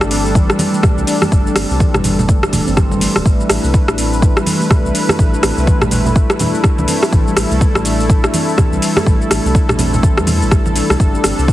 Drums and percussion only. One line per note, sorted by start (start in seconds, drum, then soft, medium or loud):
0.01 cross-stick medium
0.01 shaker soft
0.11 open hi-hat medium
0.11 shaker medium
0.26 shaker soft
0.35 kick loud
0.35 high conga medium
0.35 shaker soft
0.50 cross-stick medium
0.50 shaker soft
0.59 open hi-hat medium
0.59 high conga loud
0.59 shaker medium
0.74 shaker soft
0.83 kick loud
0.83 cross-stick medium
0.83 low conga medium
0.83 shaker soft
0.98 shaker soft
1.07 open hi-hat medium
1.07 shaker medium
1.22 cross-stick medium
1.22 high conga medium
1.22 shaker soft
1.32 kick loud
1.32 shaker medium
1.47 shaker soft
1.56 cross-stick loud
1.56 open hi-hat loud
1.56 shaker medium
1.71 shaker soft
1.80 kick loud
1.80 shaker medium
1.94 cross-stick medium
1.94 low conga loud
1.94 shaker soft
2.04 open hi-hat medium
2.04 high conga medium
2.04 low conga loud
2.04 shaker medium
2.19 low conga loud
2.19 shaker soft
2.28 kick loud
2.28 high conga medium
2.28 shaker medium
2.43 cross-stick medium
2.43 shaker soft
2.52 open hi-hat medium
2.52 high conga loud
2.52 low conga medium
2.52 shaker medium
2.68 shaker soft
2.77 kick loud
2.77 cross-stick medium
2.77 high conga medium
2.77 shaker medium
2.91 high conga loud
2.91 shaker soft
3.00 open hi-hat medium
3.00 high conga medium
3.00 shaker medium
3.16 cross-stick medium
3.16 shaker soft
3.26 kick loud
3.26 shaker medium
3.40 shaker soft
3.50 cross-stick loud
3.50 open hi-hat medium
3.50 shaker medium
3.64 shaker soft
3.74 kick loud
3.74 shaker medium
3.88 cross-stick medium
3.88 shaker soft
3.98 open hi-hat medium
3.98 shaker medium
4.13 shaker soft
4.22 kick loud
4.22 high conga medium
4.22 shaker medium
4.37 cross-stick medium
4.37 shaker soft
4.46 open hi-hat medium
4.46 high conga loud
4.46 shaker medium
4.61 shaker soft
4.70 kick loud
4.70 cross-stick medium
4.70 low conga medium
4.70 shaker medium
4.86 shaker soft
4.95 open hi-hat medium
4.95 shaker medium
5.09 cross-stick loud
5.09 high conga loud
5.09 shaker soft
5.19 kick loud
5.19 shaker medium
5.34 shaker soft
5.43 cross-stick loud
5.43 open hi-hat medium
5.43 shaker loud
5.58 shaker soft
5.67 kick loud
5.67 shaker medium
5.81 cross-stick medium
5.81 low conga medium
5.81 shaker soft
5.91 open hi-hat medium
5.91 high conga medium
5.91 low conga loud
5.91 shaker medium
6.06 low conga loud
6.06 shaker soft
6.16 kick loud
6.16 shaker medium
6.30 cross-stick loud
6.30 shaker soft
6.39 open hi-hat medium
6.39 high conga loud
6.39 low conga medium
6.39 shaker loud
6.54 shaker soft
6.64 kick loud
6.64 cross-stick medium
6.64 high conga medium
6.64 shaker medium
6.78 high conga loud
6.78 shaker soft
6.88 open hi-hat medium
6.88 high conga medium
6.88 shaker loud
7.03 cross-stick loud
7.03 shaker soft
7.12 kick loud
7.12 shaker medium
7.28 shaker soft
7.37 cross-stick loud
7.37 open hi-hat medium
7.37 shaker loud
7.51 shaker soft
7.61 kick loud
7.61 shaker medium
7.75 cross-stick medium
7.75 shaker soft
7.85 open hi-hat medium
7.85 shaker medium
8.00 shaker soft
8.09 kick loud
8.09 high conga medium
8.09 shaker medium
8.24 cross-stick medium
8.24 shaker soft
8.34 open hi-hat medium
8.34 high conga loud
8.34 shaker loud
8.49 shaker soft
8.58 kick loud
8.58 cross-stick medium
8.58 low conga medium
8.58 shaker medium
8.73 shaker soft
8.82 open hi-hat medium
8.82 shaker loud
8.96 cross-stick loud
8.96 high conga loud
8.96 shaker soft
9.06 kick loud
9.06 shaker medium
9.22 shaker soft
9.31 cross-stick medium
9.31 open hi-hat medium
9.31 shaker loud
9.46 shaker soft
9.55 kick loud
9.55 shaker medium
9.69 cross-stick medium
9.69 low conga medium
9.69 shaker soft
9.79 open hi-hat medium
9.79 high conga medium
9.79 low conga loud
9.79 shaker medium
9.94 low conga loud
9.94 shaker soft
10.02 kick loud
10.02 high conga medium
10.02 shaker medium
10.18 cross-stick medium
10.18 shaker soft
10.27 open hi-hat medium
10.27 high conga loud
10.27 low conga medium
10.27 shaker loud
10.42 shaker soft
10.51 kick loud
10.51 cross-stick medium
10.51 high conga medium
10.51 shaker medium
10.66 high conga loud
10.66 shaker soft
10.76 open hi-hat medium
10.76 high conga medium
10.76 shaker medium
10.90 cross-stick medium
10.90 shaker soft
11.00 kick loud
11.00 shaker medium
11.15 shaker soft
11.24 cross-stick medium
11.24 open hi-hat medium
11.24 shaker medium
11.39 shaker soft
11.48 kick loud
11.48 shaker medium